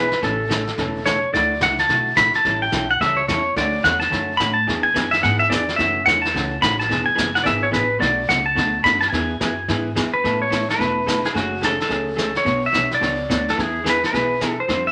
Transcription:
Already playing: B1 B4
0.11 snare
0.22 A1 C#3 E3 A3 C#4 A4, brush sweep, kick, snare
0.49 C#3 E3 A3 C#4 A4, kick, snare, hi-hat pedal
0.67 snare
0.77 E1 C#3 E3 A3 C#4 A4, brush sweep, kick, snare
1.05 C#3 E3 A3 C#4 A4 C#5, kick, snare, hi-hat pedal
1.33 D2 D3 F#3 A3 E4 F#4 D5, brush sweep, kick, snare
1.61 C#2 D3 F#3 A3 E4 F#4 F#5, kick, snare, hi-hat pedal
1.78 A5, snare
1.89 B1 D3 F#3 A3 E4 F#4, brush sweep, kick, snare
2.16 A#1 D3 F#3 A3 E4 F#4 B5, kick, snare, hi-hat pedal
2.34 A5, muted upright bass stroke, snare
2.45 A1 E3 G3 C#4 E4 A4, brush sweep, kick, snare
2.62 G5
2.72 B1 E3 G3 C#4 E4 A4, kick, snare, hi-hat pedal
2.91 F#5
3.01 C#2 E3 G3 C#4 E4 A4 E5, brush sweep, kick, snare
3.17 C#5
3.28 E2 E3 G3 C#4 E4 A4 C#5, kick, snare, hi-hat pedal
3.56 D2 D3 F#3 A3 C#4 F#4 D5, brush sweep, kick, snare
3.84 E2 D3 F#3 A3 C#4 F#4 F#5, kick, snare, hi-hat pedal
4.00 A5, snare
4.10 F#2 D3 F#3 A3 C#4 F#4, brush sweep, kick, snare
4.37 A2 D3 F#3 A3 C#4 F#4 B5, kick, snare, hi-hat pedal
4.54 A5
4.67 E2 E3 B3 D4 G#4, brush sweep, kick, snare
4.83 G#5
4.94 F#2 E3 B3 D4 G#4, kick, snare, hi-hat pedal
5.11 E5, snare
5.22 G#2 E3 B3 D4 G#4 F#5, brush sweep, kick, snare
5.39 E5
5.49 E2 E3 B3 D4 G#4 D5, kick, snare, hi-hat pedal
5.69 snare
5.76 F#2 C#3 E3 A3 C#4 F#4 E5, brush sweep, kick, snare
6.06 E2 C#3 E3 A3 C#4 F#4 F#5, kick, snare, hi-hat pedal
6.22 A5, snare
6.34 C#2 C#3 E3 A3 C#4 F#4, brush sweep, kick, snare
6.61 A1 C#3 E3 A3 C#4 F#4 B5, kick, snare, hi-hat pedal
6.80 A5, snare
6.89 E1 E3 B3 D4 G#4, brush sweep, kick, snare
7.06 G#5, muted upright bass stroke
7.15 F#1 E3 B3 D4 G#4, kick, snare, hi-hat pedal
7.35 F#5, snare
7.44 G#1 E3 B3 D4 G#4 D5 E5, brush sweep, kick, snare
7.63 C#5
7.71 A1 E3 B3 D4 G#4 B4, kick, snare, hi-hat pedal
7.99 B1 B2 F#3 A3 D4 F#4 D5, brush sweep, kick, snare
8.28 C#2 B2 F#3 A3 D4 F#4 F#5, kick, snare, hi-hat pedal
8.46 A5
8.55 D2 B2 F#3 A3 D4 F#4, brush sweep, kick, snare
8.84 F#2 B2 F#3 A3 D4 F#4 B5, kick, snare, hi-hat pedal
9.01 A5, snare
9.10 E2 E3 B3 E4 G#5, brush sweep, kick, snare
9.14 G#4
9.40 F#2 E3 B3 E4 G#4, kick, snare, hi-hat pedal
9.68 G#2 E3 B3 E4 G#4, brush sweep, kick, snare
9.95 E2 E3 B3 E4 G#4, kick, snare, hi-hat pedal
10.14 B4
10.24 A1 A3 B3 E4 A4, brush sweep, kick, snare
10.42 C#5
10.50 A3 B3 E4 A4, kick, snare, hi-hat pedal
10.69 B4, snare
10.78 E1 A3 B3 E4 A4, brush sweep, kick, snare
11.06 A3 B3 E4 A4, kick, snare, hi-hat pedal
11.25 G#4, snare
11.34 F#1 C#3 F#3 A3 C#4 F#4 G#4, brush sweep, kick, snare
11.61 C#3 F#3 A3 C#4 G#4 A4, kick, snare, hi-hat pedal
11.80 A4, snare
11.88 C#2 C#3 F#3 A3 C#4 G#4, brush sweep, kick, snare
12.16 C#3 F#3 A3 C#4 G#4, kick, snare, hi-hat pedal
12.35 C#5, snare
12.44 B1 B2 F#3 B3 D4 F#4 C#5, brush sweep, kick, snare
12.66 E5
12.72 B1 B2 F#3 B3 D4 F#4 C#5, kick, snare, hi-hat pedal
12.91 D5, snare
13.00 C#2 B2 F#3 B3 D4 F#4 C#5, brush sweep, kick, snare
13.29 D2 B2 F#3 B3 D4 F#4 C#5, kick, snare, hi-hat pedal
13.48 A4, snare
13.57 E2 E3 B3 E4 G#4, brush sweep, kick, snare
13.84 E3 B3 E4 G#4, kick, snare, hi-hat pedal
13.90 B4
14.04 B4, snare
14.12 B1 E3 B3 E4 G#4, brush sweep, kick, snare
14.41 E3 B3 E4 G#4, kick, snare, hi-hat pedal
14.50 A4
14.60 C5
14.68 F2 F3 G3 C4 F4 C5, brush sweep, kick, snare
14.87 E5

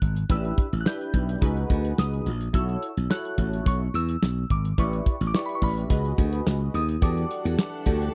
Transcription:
Already playing: F#6
0.02 G#1, kick, closed hi-hat
0.16 closed hi-hat
0.29 A1 D4 E4 G4 B4 E6, kick, closed hi-hat
0.45 closed hi-hat
0.58 kick, closed hi-hat
0.73 A1, closed hi-hat
0.81 F#6
0.85 D4 E4 G4 B4 G6, snare, clap
1.01 closed hi-hat
1.14 B1, kick, closed hi-hat
1.29 closed hi-hat
1.41 C#2 D#4 F#4 G#4 B4, kick, closed hi-hat
1.57 closed hi-hat
1.70 D2, kick, closed hi-hat
1.85 closed hi-hat
1.98 C#2 D#6, snare, clap
2.13 closed hi-hat
2.26 A#1, closed hi-hat
2.41 closed hi-hat
2.53 B1 E4 F#4 A4 C#5 E6, kick, closed hi-hat
2.69 closed hi-hat
2.82 closed hi-hat
2.97 B1, closed hi-hat
3.10 E4 F#4 A4 C#5 F#6, snare, clap
3.25 closed hi-hat
3.38 A1, kick, closed hi-hat
3.53 closed hi-hat
3.66 B1 C#6, kick, closed hi-hat
3.94 E2 E6, closed hi-hat
4.09 closed hi-hat
4.22 B1, snare, clap
4.50 G#1 D6, kick, closed hi-hat
4.65 closed hi-hat
4.78 A1 E4 G4 B4 D5 C#6, kick, closed hi-hat
4.93 closed hi-hat
5.06 kick, closed hi-hat
5.21 A1, closed hi-hat
5.27 D6
5.34 E4 G4 B4 D5 C#6, snare, clap
5.46 B5, closed hi-hat
5.55 C#6
5.62 A1 B5, kick, open hi-hat
5.77 closed hi-hat
5.90 C#2 F#4 G#4 B4 D#5, kick, closed hi-hat
6.05 closed hi-hat
6.18 D2, kick, closed hi-hat
6.33 closed hi-hat
6.46 C#2, snare, clap
6.74 D#2 D#6, closed hi-hat
6.89 closed hi-hat
7.02 E2 E3 G3 D4 F#4 G4 A4 D5 F#5 D6, kick, closed hi-hat
7.17 closed hi-hat
7.31 closed hi-hat
7.45 E2, closed hi-hat
7.59 snare, clap
7.86 D2 F#4 G4 A4 D5, kick, closed hi-hat
8.01 closed hi-hat

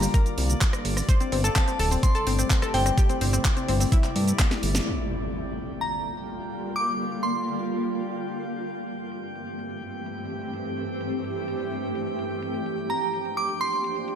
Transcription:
Already playing: D3 G3 A#3 F4 D5 A#5 D6
0.02 G3, open hi-hat, shaker
0.14 A#4, kick, closed hi-hat, shaker
0.26 closed hi-hat, shaker
0.38 C2, open hi-hat
0.50 closed hi-hat, shaker
0.61 kick, clap, closed hi-hat, shaker
0.73 cross-stick, closed hi-hat, shaker
0.85 G1, open hi-hat
0.97 cross-stick, open hi-hat, shaker
1.09 C3 G3 A3 E4 C5, kick, closed hi-hat, shaker
1.20 C4, closed hi-hat, shaker
1.32 G1 C4, open hi-hat
1.44 A4, closed hi-hat, shaker
1.56 C4 A5, kick, clap, closed hi-hat, shaker
1.68 C4, closed hi-hat, shaker
1.79 D1 A4, open hi-hat
1.91 C4, open hi-hat, shaker
2.03 C4 C6, kick, closed hi-hat, shaker
2.15 A4, closed hi-hat, shaker
2.27 G1 C4, open hi-hat
2.39 C4, closed hi-hat, shaker
2.50 C4, kick, clap, closed hi-hat, shaker
2.62 A4, cross-stick, closed hi-hat, shaker
2.74 G1 C4 G5, open hi-hat
2.86 C4, cross-stick, closed hi-hat, shaker
2.98 G4, kick, closed hi-hat, shaker
3.09 C4, closed hi-hat, shaker
3.21 G1 C4, open hi-hat
3.33 C4, closed hi-hat, shaker
3.45 kick, clap, closed hi-hat, shaker
3.57 C4, closed hi-hat, shaker
3.68 G1 C4, open hi-hat
3.80 C4, open hi-hat, shaker
3.92 E4, kick, closed hi-hat, shaker
4.04 clap, closed hi-hat, shaker
4.16 G2, open hi-hat
4.28 closed hi-hat, shaker
4.39 kick, snare, clap, closed hi-hat, shaker
4.51 snare, closed hi-hat, shaker
4.63 G1, open hi-hat
4.75 snare, open hi-hat, shaker
4.87 D3 G3 A#3 F4 G5 G6, closed hi-hat, impact
5.34 closed hi-hat
5.57 closed hi-hat
5.81 A#5
6.28 closed hi-hat
6.52 closed hi-hat
6.64 closed hi-hat
6.76 D6
6.99 closed hi-hat
7.23 C6
7.70 closed hi-hat
7.82 closed hi-hat
7.94 closed hi-hat
8.05 closed hi-hat
8.17 closed hi-hat
8.29 closed hi-hat
8.41 closed hi-hat
8.53 closed hi-hat
8.65 G2 E3 A3 C4 G4, closed hi-hat
8.76 closed hi-hat
8.88 closed hi-hat
9.00 closed hi-hat
9.12 closed hi-hat
9.24 closed hi-hat
9.35 closed hi-hat
9.47 closed hi-hat
9.59 closed hi-hat
9.71 closed hi-hat
9.83 closed hi-hat
9.95 closed hi-hat
10.06 closed hi-hat
10.18 closed hi-hat
10.30 closed hi-hat
10.42 closed hi-hat
10.54 closed hi-hat
10.65 closed hi-hat
10.77 closed hi-hat
10.89 closed hi-hat
11.01 closed hi-hat
11.13 closed hi-hat
11.24 closed hi-hat
11.36 closed hi-hat
11.48 closed hi-hat
11.60 closed hi-hat
11.72 closed hi-hat
11.83 closed hi-hat
11.95 closed hi-hat
12.07 closed hi-hat
12.19 closed hi-hat
12.31 closed hi-hat
12.42 F3 A#3 D4, closed hi-hat
12.54 closed hi-hat
12.66 closed hi-hat
12.78 closed hi-hat
12.90 A#5, closed hi-hat
13.02 closed hi-hat
13.13 closed hi-hat
13.25 closed hi-hat
13.37 D6, closed hi-hat
13.49 closed hi-hat
13.61 C6, closed hi-hat
13.72 closed hi-hat
13.84 closed hi-hat
13.96 closed hi-hat
14.08 closed hi-hat

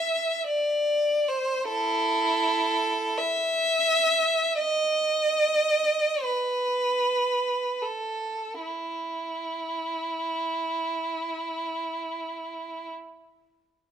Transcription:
Already playing: E5
0.48 D5
1.28 C5
1.69 E4 A4
3.17 E5
4.60 D#5
6.23 B4
7.82 A4
8.62 E4

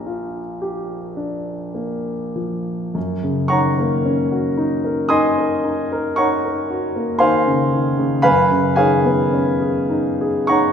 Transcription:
Already playing: A#1 A#3 D4 G4 A#4
0.06 F4
0.61 G4
1.17 D4
1.74 A#3
2.36 F3
2.95 F#2
3.23 C#3
3.48 D#3 C#5 F#5 A#5 C#6
3.79 A#3
4.05 C#4
4.31 F#4
4.57 D#4
4.84 A#4
5.09 D#4 D#5 G#5 C6 D#6
5.38 A#4
5.65 D#4
5.92 A#4
6.16 D#4 C#5 F#5 A#5 C#6
6.45 A#4
6.70 F#4
6.96 A#3
7.19 D#3 C5 F5 G#5 C6
7.47 C#3
7.73 D#3
7.98 C#3
8.22 F#2 B4 F5 G#5 B5
8.51 C#3
8.76 D#3 G#4 C#5 F5 G#5
9.05 B3
9.33 C#4
9.60 G#4
9.90 D#4
10.21 G#4
10.47 D#4 C#5 F#5 A#5 C#6

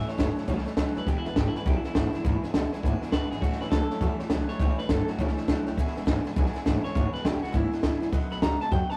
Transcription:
Already playing: A2 E3
0.07 G3 C#4 E4 C#5 E5 A5, snare
0.18 G1 A2 E3 F#3 G3 C#4 E4 C#5 E5 A5, kick, snare, hi-hat pedal
0.36 G3 C#4 E4 C#5 E5 A5, muted upright bass stroke, snare
0.48 C#2 A2 E3 G3 C#4 E4 C#5 E5 A5, kick, snare
0.58 snare
0.66 G3 C#4 E4 C#5 E5 A5, muted upright bass stroke, snare
0.77 C#2 A2 E3 F#3 G3 C#4 E4 C#5 E5 F#5, kick, snare, hi-hat pedal
0.95 D#2 G3 C#4 E4 B4 C#5 E5 A5, snare
1.06 E1 E2 B2 E3 G#3 D4 E4 G4 B4 E5 G#5, kick, snare
1.18 E4
1.25 E1 E3 G#3 D4 E4 B4 E5 G#5, snare
1.36 G#1 E2 C#3 E3 G#3 D4 E4 G4 B4 E5 G#5, kick, snare, hi-hat pedal
1.48 E4
1.55 E3 G#3 D4 E4 B4 E5 G#5, muted upright bass stroke, snare
1.65 B1 E2 B2 E3 G#3 D4 E4 G4 B4 E5 G#5, kick, snare
1.77 E4
1.84 E3 G#3 D4 E4 B4 E5 G#5, muted upright bass stroke, snare
1.95 G#1 E2 C#3 E3 G#3 D4 E4 B4 E5 G#5, kick, snare, hi-hat pedal
2.13 E3 G#3 D4 E4 B4 E5 G#5, muted upright bass stroke, snare
2.24 G#1 E2 B2 E3 G#3 D4 E4 B4 E5 B5, kick, snare
2.43 E3 G#3 D4 E4 B4 E5 G#5, muted upright bass stroke, snare
2.53 D2 E2 C#3 E3 G#3 D4 B4 E5 G#5, kick, snare, hi-hat pedal
2.58 E4
2.72 G#3 D4 E4 B4 E5 G#5, snare
2.77 E3
2.83 G#1 E2 B2 E3 G#3 D4 B4 E5 G#5, kick, snare
2.87 E4
3.01 E4 B4 E5 G#5, muted upright bass stroke, snare
3.05 E3 G#3 D4
3.12 G#1 E2 C#3 E3 G#3 D4 B4 E5 F#5, kick, snare, hi-hat pedal
3.16 E4
3.31 G#1 E3 G#3 D4 E4 G#4 B4 E5 F#5, snare
3.41 A1 A2 E3 G3 C#4 F#4 C#5 E5 A5, kick, snare
3.45 E4
3.52 snare
3.60 A1 C#4 E4 B4 C#5 E5 A5, snare
3.65 G3
3.71 C#2 A2 E3 F#3 G3 C#4 E4 A4 C#5 E5 A5, kick, snare, hi-hat pedal
3.90 G3 C#4 E4 C#5 E5 A5, snare
4.01 E2 A2 E3 G3 C#4 E4 C#5 E5 A5, kick, snare
4.19 G3 C#4 E4 C#5 E5 A5, muted upright bass stroke, snare
4.30 C#2 A2 E3 F#3 G3 C#4 C#5 E5 A5, kick, snare, hi-hat pedal
4.34 E4
4.48 G3 C#4 E4 C#5 E5 A5, muted upright bass stroke, snare
4.59 C#2 A2 E3 G3 C#4 E4 C#5 E5 G5, kick, snare
4.78 G3 C#4 E4 B4 C#5 E5 A5, snare
4.89 G1 A2 E3 F#3 G3 C#4 E4 A4 C#5 E5 A5, kick, snare, hi-hat pedal
5.07 G3 C#4 E4 F#4 C#5 E5 A5, muted upright bass stroke, snare
5.18 C#2 A2 E3 G3 C#4 E4 C#5 E5 A5, kick, snare
5.28 snare
5.37 G3 C#4 E4 C#5 E5 A5, snare
5.48 C#2 A2 E3 F#3 G3 C#4 E4 C#5 E5 F#5, kick, snare, hi-hat pedal
5.66 D2 G3 C#4 E4 C#5 E5 G5, snare
5.77 E1 E2 B2 E3 G#3 D4 E4 B4 E5 G#5, kick, snare
5.87 snare
5.96 E1 E3 G#3 D4 E4 B4 E5 G#5, snare
6.05 G#1 E2 C#3 E3 G#3 D4 E4 B4 E5 G#5, kick, snare, hi-hat pedal
6.24 E3 G#3 D4 E4 B4 E5 G#5, muted upright bass stroke, snare
6.36 B1 E2 B2 E3 G#3 D4 E4 B4 E5 G#5, kick, snare
6.46 snare
6.53 E3 G#3 D4 E4 B4 E5 G#5, muted upright bass stroke, snare
6.65 G#1 E2 C#3 E3 G#3 D4 E4 B4 E5 G#5, kick, snare, hi-hat pedal
6.83 E3 G#3 D4 E4 B4 C#5 E5 G#5, muted upright bass stroke, snare
6.95 G#1 E2 B2 E3 G#3 D4 E4 B4 E5 G#5, kick, snare
7.12 G#3 D4 E4 B4 E5 G#5, muted upright bass stroke, snare
7.16 E3
7.23 D2 E2 C#3 E3 G#3 D4 G4 B4 E5 G#5, kick, snare, hi-hat pedal
7.28 E4
7.42 G#3 D4 E4 F#4 B4 E5 G#5, snare
7.46 E3
7.51 G#1 E2 B2 E3 G#3 D4 E4 B4 E5 F#5, kick, snare
7.70 G#3 D4 E4 B4 E5 G#5, muted upright bass stroke, snare
7.75 E3
7.82 G#1 E2 C#3 E3 G#3 D4 E4 B4 E5 G#5, kick, snare, hi-hat pedal
8.01 A#1 E3 G#3 D4 E4 B4 E5 G#5, snare
8.12 B1 B2 D#3 F#3 A3 B3 F#4 B4 D#5 F#5, kick, snare
8.30 B1 A3 B3 F#4 B4 D#5 F#5 B5, snare
8.41 D#2 B2 D#3 G#3 A3 B3 F#4 B4 D#5 F#5 A#5, kick, snare, hi-hat pedal
8.60 A3 B3 F#4 B4 D#5 G#5 A5, muted upright bass stroke, snare
8.71 F#2 B2 D#3 F#3 A3 B3 F#4 B4 D#5 F#5 G5, kick, snare
8.89 B3 F#4 B4 D#5 F#5 A5, muted upright bass stroke, snare
8.94 A3

